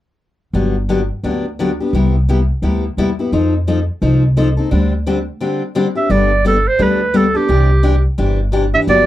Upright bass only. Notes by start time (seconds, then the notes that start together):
0.53 G1
1.23 D2
1.93 C2
2.62 D2
2.97 E2
3.32 F2
4.02 C2
4.72 D2
6.10 G1
6.79 D2
7.49 C2
8.18 G1
8.87 G1